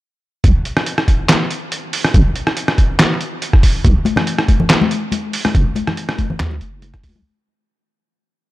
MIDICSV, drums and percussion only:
0, 0, Header, 1, 2, 480
1, 0, Start_track
1, 0, Tempo, 425532
1, 496, Time_signature, 4, 2, 24, 8
1, 9603, End_track
2, 0, Start_track
2, 0, Title_t, "Drums"
2, 496, Note_on_c, 9, 42, 79
2, 497, Note_on_c, 9, 36, 122
2, 609, Note_off_c, 9, 36, 0
2, 609, Note_off_c, 9, 42, 0
2, 737, Note_on_c, 9, 42, 57
2, 850, Note_off_c, 9, 42, 0
2, 865, Note_on_c, 9, 37, 77
2, 975, Note_on_c, 9, 42, 80
2, 978, Note_off_c, 9, 37, 0
2, 1088, Note_off_c, 9, 42, 0
2, 1105, Note_on_c, 9, 37, 76
2, 1217, Note_on_c, 9, 36, 60
2, 1217, Note_on_c, 9, 42, 54
2, 1218, Note_off_c, 9, 37, 0
2, 1329, Note_off_c, 9, 36, 0
2, 1330, Note_off_c, 9, 42, 0
2, 1457, Note_on_c, 9, 38, 121
2, 1457, Note_on_c, 9, 39, 92
2, 1457, Note_on_c, 9, 42, 87
2, 1569, Note_off_c, 9, 38, 0
2, 1569, Note_off_c, 9, 39, 0
2, 1569, Note_off_c, 9, 42, 0
2, 1698, Note_on_c, 9, 42, 70
2, 1811, Note_off_c, 9, 42, 0
2, 1938, Note_on_c, 9, 42, 82
2, 2051, Note_off_c, 9, 42, 0
2, 2178, Note_on_c, 9, 46, 87
2, 2291, Note_off_c, 9, 46, 0
2, 2306, Note_on_c, 9, 37, 75
2, 2417, Note_on_c, 9, 36, 123
2, 2417, Note_on_c, 9, 42, 79
2, 2419, Note_off_c, 9, 37, 0
2, 2530, Note_off_c, 9, 36, 0
2, 2530, Note_off_c, 9, 42, 0
2, 2657, Note_on_c, 9, 42, 55
2, 2769, Note_off_c, 9, 42, 0
2, 2784, Note_on_c, 9, 37, 76
2, 2895, Note_on_c, 9, 42, 84
2, 2897, Note_off_c, 9, 37, 0
2, 3008, Note_off_c, 9, 42, 0
2, 3024, Note_on_c, 9, 37, 72
2, 3137, Note_off_c, 9, 37, 0
2, 3137, Note_on_c, 9, 36, 65
2, 3137, Note_on_c, 9, 42, 52
2, 3249, Note_off_c, 9, 42, 0
2, 3250, Note_off_c, 9, 36, 0
2, 3376, Note_on_c, 9, 38, 125
2, 3376, Note_on_c, 9, 39, 95
2, 3376, Note_on_c, 9, 42, 84
2, 3489, Note_off_c, 9, 38, 0
2, 3489, Note_off_c, 9, 39, 0
2, 3489, Note_off_c, 9, 42, 0
2, 3616, Note_on_c, 9, 42, 62
2, 3729, Note_off_c, 9, 42, 0
2, 3857, Note_on_c, 9, 42, 78
2, 3970, Note_off_c, 9, 42, 0
2, 3986, Note_on_c, 9, 36, 113
2, 3986, Note_on_c, 9, 37, 49
2, 4097, Note_off_c, 9, 36, 0
2, 4097, Note_on_c, 9, 36, 66
2, 4097, Note_on_c, 9, 46, 91
2, 4099, Note_off_c, 9, 37, 0
2, 4209, Note_off_c, 9, 46, 0
2, 4210, Note_off_c, 9, 36, 0
2, 4337, Note_on_c, 9, 36, 123
2, 4337, Note_on_c, 9, 42, 79
2, 4450, Note_off_c, 9, 36, 0
2, 4450, Note_off_c, 9, 42, 0
2, 4569, Note_on_c, 9, 63, 96
2, 4577, Note_on_c, 9, 42, 54
2, 4682, Note_off_c, 9, 63, 0
2, 4690, Note_off_c, 9, 42, 0
2, 4694, Note_on_c, 9, 64, 82
2, 4705, Note_on_c, 9, 37, 81
2, 4806, Note_off_c, 9, 64, 0
2, 4817, Note_on_c, 9, 42, 82
2, 4818, Note_off_c, 9, 37, 0
2, 4930, Note_off_c, 9, 42, 0
2, 4946, Note_on_c, 9, 37, 80
2, 5057, Note_on_c, 9, 36, 65
2, 5058, Note_on_c, 9, 42, 51
2, 5059, Note_off_c, 9, 37, 0
2, 5061, Note_on_c, 9, 63, 68
2, 5170, Note_off_c, 9, 36, 0
2, 5171, Note_off_c, 9, 42, 0
2, 5174, Note_off_c, 9, 63, 0
2, 5186, Note_on_c, 9, 64, 84
2, 5298, Note_on_c, 9, 38, 127
2, 5298, Note_on_c, 9, 39, 89
2, 5298, Note_on_c, 9, 42, 80
2, 5299, Note_off_c, 9, 64, 0
2, 5411, Note_off_c, 9, 38, 0
2, 5411, Note_off_c, 9, 39, 0
2, 5411, Note_off_c, 9, 42, 0
2, 5431, Note_on_c, 9, 63, 101
2, 5538, Note_on_c, 9, 42, 66
2, 5544, Note_off_c, 9, 63, 0
2, 5651, Note_off_c, 9, 42, 0
2, 5772, Note_on_c, 9, 63, 73
2, 5778, Note_on_c, 9, 42, 77
2, 5884, Note_off_c, 9, 63, 0
2, 5890, Note_off_c, 9, 42, 0
2, 6017, Note_on_c, 9, 46, 90
2, 6130, Note_off_c, 9, 46, 0
2, 6146, Note_on_c, 9, 37, 79
2, 6149, Note_on_c, 9, 63, 91
2, 6257, Note_on_c, 9, 36, 127
2, 6257, Note_on_c, 9, 42, 73
2, 6258, Note_off_c, 9, 37, 0
2, 6262, Note_off_c, 9, 63, 0
2, 6370, Note_off_c, 9, 36, 0
2, 6370, Note_off_c, 9, 42, 0
2, 6492, Note_on_c, 9, 63, 95
2, 6497, Note_on_c, 9, 42, 55
2, 6605, Note_off_c, 9, 63, 0
2, 6610, Note_off_c, 9, 42, 0
2, 6626, Note_on_c, 9, 37, 81
2, 6632, Note_on_c, 9, 64, 77
2, 6738, Note_on_c, 9, 42, 77
2, 6739, Note_off_c, 9, 37, 0
2, 6745, Note_off_c, 9, 64, 0
2, 6850, Note_off_c, 9, 42, 0
2, 6866, Note_on_c, 9, 37, 85
2, 6974, Note_on_c, 9, 63, 68
2, 6977, Note_on_c, 9, 36, 60
2, 6977, Note_on_c, 9, 42, 50
2, 6979, Note_off_c, 9, 37, 0
2, 7086, Note_off_c, 9, 63, 0
2, 7090, Note_off_c, 9, 36, 0
2, 7090, Note_off_c, 9, 42, 0
2, 7107, Note_on_c, 9, 64, 73
2, 7216, Note_on_c, 9, 38, 125
2, 7216, Note_on_c, 9, 39, 92
2, 7216, Note_on_c, 9, 42, 76
2, 7220, Note_off_c, 9, 64, 0
2, 7329, Note_off_c, 9, 38, 0
2, 7329, Note_off_c, 9, 39, 0
2, 7329, Note_off_c, 9, 42, 0
2, 7345, Note_on_c, 9, 63, 89
2, 7455, Note_on_c, 9, 42, 64
2, 7457, Note_off_c, 9, 63, 0
2, 7568, Note_off_c, 9, 42, 0
2, 7695, Note_on_c, 9, 42, 76
2, 7696, Note_on_c, 9, 63, 67
2, 7808, Note_off_c, 9, 42, 0
2, 7809, Note_off_c, 9, 63, 0
2, 7824, Note_on_c, 9, 37, 53
2, 7824, Note_on_c, 9, 42, 35
2, 7826, Note_on_c, 9, 36, 111
2, 7935, Note_on_c, 9, 46, 96
2, 7937, Note_off_c, 9, 36, 0
2, 7937, Note_off_c, 9, 37, 0
2, 7937, Note_off_c, 9, 42, 0
2, 7937, Note_on_c, 9, 36, 64
2, 8048, Note_off_c, 9, 46, 0
2, 8050, Note_off_c, 9, 36, 0
2, 8072, Note_on_c, 9, 63, 99
2, 8184, Note_off_c, 9, 63, 0
2, 9603, End_track
0, 0, End_of_file